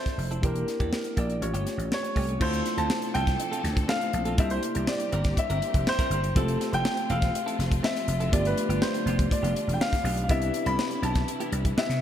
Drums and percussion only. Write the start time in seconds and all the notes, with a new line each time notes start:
0.06 kick, snare, closed hi-hat
0.19 open hi-hat
0.31 closed hi-hat
0.43 kick, closed hi-hat
0.56 closed hi-hat
0.68 snare, closed hi-hat
0.80 kick, closed hi-hat
0.93 snare
1.04 closed hi-hat
1.17 kick, closed hi-hat
1.30 closed hi-hat
1.42 closed hi-hat
1.54 closed hi-hat
1.67 snare, closed hi-hat
1.79 closed hi-hat
1.92 snare
2.04 closed hi-hat
2.16 kick, open hi-hat
2.29 closed hi-hat
2.41 kick, crash
2.53 closed hi-hat
2.66 snare, closed hi-hat
2.78 closed hi-hat
2.90 snare
3.02 closed hi-hat
3.15 closed hi-hat
3.27 kick, snare, closed hi-hat
3.40 closed hi-hat
3.53 closed hi-hat
3.65 snare, closed hi-hat
3.77 kick, closed hi-hat
3.89 snare
4.01 closed hi-hat
4.13 closed hi-hat
4.25 closed hi-hat
4.38 kick, closed hi-hat
4.50 closed hi-hat
4.63 closed hi-hat
4.75 closed hi-hat
4.87 snare
5.00 closed hi-hat
5.12 closed hi-hat
5.24 kick, snare, closed hi-hat
5.37 kick, closed hi-hat
5.50 closed hi-hat
5.62 closed hi-hat
5.74 kick, closed hi-hat
5.87 snare
5.99 kick, snare, closed hi-hat
6.11 closed hi-hat
6.24 closed hi-hat
6.36 kick, closed hi-hat
6.48 closed hi-hat
6.61 snare, closed hi-hat
6.73 closed hi-hat
6.85 snare
6.97 closed hi-hat
7.10 closed hi-hat
7.22 kick, snare, closed hi-hat
7.35 closed hi-hat
7.48 closed hi-hat
7.60 snare, closed hi-hat
7.72 kick, closed hi-hat
7.84 snare
7.96 snare, closed hi-hat
8.08 closed hi-hat
8.20 closed hi-hat
8.33 kick, closed hi-hat
8.45 closed hi-hat
8.58 closed hi-hat
8.70 closed hi-hat
8.82 snare
8.95 closed hi-hat
9.07 closed hi-hat
9.19 kick, closed hi-hat
9.31 kick, closed hi-hat
9.44 closed hi-hat
9.56 closed hi-hat
9.69 closed hi-hat
9.81 snare
9.93 kick, snare, closed hi-hat
10.05 open hi-hat
10.17 closed hi-hat
10.29 kick, closed hi-hat
10.42 closed hi-hat
10.54 closed hi-hat
10.66 closed hi-hat
10.79 snare
10.91 closed hi-hat
11.03 closed hi-hat
11.15 kick, snare, closed hi-hat
11.28 closed hi-hat
11.40 closed hi-hat
11.52 closed hi-hat
11.65 kick, closed hi-hat
11.78 snare
11.90 snare, closed hi-hat